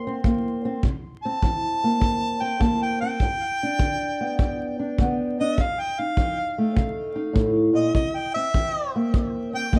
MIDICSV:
0, 0, Header, 1, 4, 480
1, 0, Start_track
1, 0, Tempo, 593472
1, 671, Time_signature, 4, 2, 24, 8
1, 7919, End_track
2, 0, Start_track
2, 0, Title_t, "Harmonica"
2, 0, Program_c, 0, 22
2, 994, Note_on_c, 0, 81, 100
2, 1961, Note_on_c, 0, 79, 84
2, 1973, Note_off_c, 0, 81, 0
2, 2118, Note_on_c, 0, 81, 82
2, 2131, Note_off_c, 0, 79, 0
2, 2270, Note_off_c, 0, 81, 0
2, 2284, Note_on_c, 0, 79, 83
2, 2431, Note_off_c, 0, 79, 0
2, 2436, Note_on_c, 0, 79, 107
2, 3840, Note_off_c, 0, 79, 0
2, 4371, Note_on_c, 0, 75, 96
2, 4539, Note_on_c, 0, 77, 92
2, 4551, Note_off_c, 0, 75, 0
2, 4690, Note_on_c, 0, 79, 83
2, 4703, Note_off_c, 0, 77, 0
2, 4847, Note_on_c, 0, 77, 92
2, 4859, Note_off_c, 0, 79, 0
2, 5303, Note_off_c, 0, 77, 0
2, 6268, Note_on_c, 0, 75, 91
2, 6424, Note_off_c, 0, 75, 0
2, 6429, Note_on_c, 0, 75, 87
2, 6600, Note_on_c, 0, 79, 86
2, 6612, Note_off_c, 0, 75, 0
2, 6741, Note_off_c, 0, 79, 0
2, 6746, Note_on_c, 0, 76, 110
2, 7214, Note_off_c, 0, 76, 0
2, 7726, Note_on_c, 0, 79, 106
2, 7874, Note_off_c, 0, 79, 0
2, 7919, End_track
3, 0, Start_track
3, 0, Title_t, "Steel-string acoustic guitar"
3, 0, Program_c, 1, 25
3, 0, Note_on_c, 1, 43, 64
3, 0, Note_on_c, 1, 58, 59
3, 55, Note_on_c, 1, 60, 61
3, 164, Note_off_c, 1, 43, 0
3, 194, Note_off_c, 1, 58, 0
3, 200, Note_on_c, 1, 52, 68
3, 204, Note_on_c, 1, 58, 62
3, 517, Note_off_c, 1, 60, 0
3, 527, Note_on_c, 1, 60, 64
3, 645, Note_off_c, 1, 52, 0
3, 658, Note_off_c, 1, 60, 0
3, 659, Note_off_c, 1, 58, 0
3, 686, Note_on_c, 1, 48, 79
3, 1014, Note_on_c, 1, 60, 58
3, 1128, Note_off_c, 1, 48, 0
3, 1163, Note_on_c, 1, 52, 69
3, 1486, Note_on_c, 1, 58, 58
3, 1606, Note_off_c, 1, 52, 0
3, 1620, Note_on_c, 1, 43, 65
3, 1942, Note_off_c, 1, 60, 0
3, 1952, Note_on_c, 1, 60, 57
3, 2075, Note_off_c, 1, 43, 0
3, 2095, Note_off_c, 1, 58, 0
3, 2101, Note_on_c, 1, 52, 64
3, 2106, Note_on_c, 1, 58, 61
3, 2434, Note_off_c, 1, 60, 0
3, 2443, Note_on_c, 1, 60, 64
3, 2555, Note_off_c, 1, 52, 0
3, 2569, Note_off_c, 1, 58, 0
3, 2576, Note_off_c, 1, 60, 0
3, 2605, Note_on_c, 1, 43, 77
3, 2936, Note_on_c, 1, 62, 56
3, 3047, Note_off_c, 1, 43, 0
3, 3063, Note_on_c, 1, 50, 68
3, 3402, Note_on_c, 1, 59, 60
3, 3515, Note_off_c, 1, 50, 0
3, 3553, Note_on_c, 1, 43, 61
3, 3868, Note_off_c, 1, 62, 0
3, 3878, Note_on_c, 1, 62, 59
3, 4000, Note_off_c, 1, 43, 0
3, 4033, Note_off_c, 1, 59, 0
3, 4045, Note_on_c, 1, 50, 67
3, 4052, Note_on_c, 1, 59, 67
3, 4356, Note_off_c, 1, 62, 0
3, 4371, Note_on_c, 1, 62, 64
3, 4486, Note_off_c, 1, 50, 0
3, 4500, Note_off_c, 1, 62, 0
3, 4502, Note_off_c, 1, 59, 0
3, 4514, Note_on_c, 1, 41, 75
3, 4846, Note_on_c, 1, 63, 61
3, 4960, Note_off_c, 1, 41, 0
3, 4998, Note_on_c, 1, 53, 65
3, 5324, Note_on_c, 1, 57, 61
3, 5442, Note_off_c, 1, 53, 0
3, 5468, Note_on_c, 1, 48, 68
3, 5777, Note_off_c, 1, 63, 0
3, 5786, Note_on_c, 1, 63, 60
3, 5917, Note_off_c, 1, 48, 0
3, 5930, Note_on_c, 1, 45, 66
3, 6251, Note_off_c, 1, 45, 0
3, 6255, Note_on_c, 1, 46, 68
3, 6407, Note_off_c, 1, 63, 0
3, 6415, Note_off_c, 1, 57, 0
3, 6419, Note_off_c, 1, 46, 0
3, 6427, Note_on_c, 1, 48, 79
3, 6760, Note_on_c, 1, 60, 62
3, 6877, Note_off_c, 1, 48, 0
3, 6916, Note_on_c, 1, 52, 69
3, 7242, Note_on_c, 1, 58, 62
3, 7362, Note_off_c, 1, 52, 0
3, 7386, Note_on_c, 1, 43, 68
3, 7706, Note_off_c, 1, 60, 0
3, 7710, Note_on_c, 1, 60, 59
3, 7838, Note_off_c, 1, 43, 0
3, 7864, Note_on_c, 1, 52, 69
3, 7868, Note_off_c, 1, 58, 0
3, 7871, Note_on_c, 1, 58, 62
3, 7919, Note_off_c, 1, 52, 0
3, 7919, Note_off_c, 1, 58, 0
3, 7919, Note_off_c, 1, 60, 0
3, 7919, End_track
4, 0, Start_track
4, 0, Title_t, "Drums"
4, 195, Note_on_c, 9, 36, 71
4, 276, Note_off_c, 9, 36, 0
4, 673, Note_on_c, 9, 36, 68
4, 754, Note_off_c, 9, 36, 0
4, 1152, Note_on_c, 9, 36, 64
4, 1233, Note_off_c, 9, 36, 0
4, 1629, Note_on_c, 9, 36, 68
4, 1710, Note_off_c, 9, 36, 0
4, 2109, Note_on_c, 9, 36, 68
4, 2189, Note_off_c, 9, 36, 0
4, 2588, Note_on_c, 9, 36, 64
4, 2669, Note_off_c, 9, 36, 0
4, 3068, Note_on_c, 9, 36, 72
4, 3149, Note_off_c, 9, 36, 0
4, 3551, Note_on_c, 9, 36, 71
4, 3631, Note_off_c, 9, 36, 0
4, 4031, Note_on_c, 9, 36, 69
4, 4112, Note_off_c, 9, 36, 0
4, 4512, Note_on_c, 9, 36, 66
4, 4593, Note_off_c, 9, 36, 0
4, 4991, Note_on_c, 9, 36, 69
4, 5072, Note_off_c, 9, 36, 0
4, 5472, Note_on_c, 9, 36, 67
4, 5552, Note_off_c, 9, 36, 0
4, 5949, Note_on_c, 9, 36, 73
4, 6030, Note_off_c, 9, 36, 0
4, 6428, Note_on_c, 9, 36, 70
4, 6509, Note_off_c, 9, 36, 0
4, 6909, Note_on_c, 9, 36, 70
4, 6990, Note_off_c, 9, 36, 0
4, 7391, Note_on_c, 9, 36, 73
4, 7471, Note_off_c, 9, 36, 0
4, 7871, Note_on_c, 9, 36, 70
4, 7919, Note_off_c, 9, 36, 0
4, 7919, End_track
0, 0, End_of_file